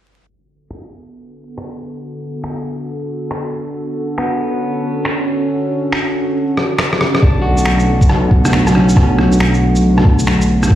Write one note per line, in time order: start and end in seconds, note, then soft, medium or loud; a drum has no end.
0.27 7.19 D3 medium
0.27 3.72 B3 medium
0.27 7.19 F#4 medium
0.27 7.19 A4 medium
0.71 finger snap medium
1.58 finger snap medium
2.44 finger snap medium
3.31 finger snap loud
3.75 7.20 C#4 medium
4.18 4.94 B3 medium
4.18 finger snap loud
5.05 finger snap loud
5.92 finger snap loud
6.57 cross-stick medium
6.78 finger snap loud
6.78 cross-stick medium
6.93 cross-stick medium
7.01 cross-stick medium
7.15 cross-stick medium
7.22 10.69 B1 medium
7.22 10.67 D3 medium
7.22 10.75 A3 medium
7.22 10.67 B3 medium
7.22 7.98 D4 medium
7.22 10.67 F#4 medium
7.22 kick loud
7.42 8.10 F#4 medium
7.58 shaker medium
7.66 finger snap loud
7.80 shaker soft
8.01 kick loud
8.01 shaker medium
8.10 cross-stick medium
8.31 kick loud
8.45 cross-stick medium
8.45 shaker medium
8.53 finger snap loud
8.67 cross-stick medium
8.67 shaker soft
8.75 9.51 C#4 medium
8.75 cross-stick soft
8.89 shaker medium
8.96 kick loud
8.96 cross-stick medium
9.18 cross-stick soft
9.32 shaker medium
9.40 finger snap loud
9.54 shaker soft
9.76 shaker medium
9.98 cross-stick medium
10.05 kick loud
10.19 shaker medium
10.27 finger snap loud
10.41 shaker soft
10.63 cross-stick medium
10.63 shaker medium
10.70 10.75 D2 medium
10.70 10.75 D3 medium
10.70 10.75 C#4 medium
10.70 10.75 F#4 medium
10.70 kick loud